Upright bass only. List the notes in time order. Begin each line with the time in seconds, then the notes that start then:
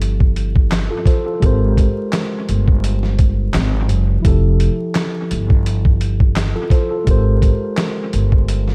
Already playing: G1
1.43 G#1
2.49 G1
3.55 G#1
3.90 F#1
4.25 F1
5.31 G1
7.07 G#1
8.14 G1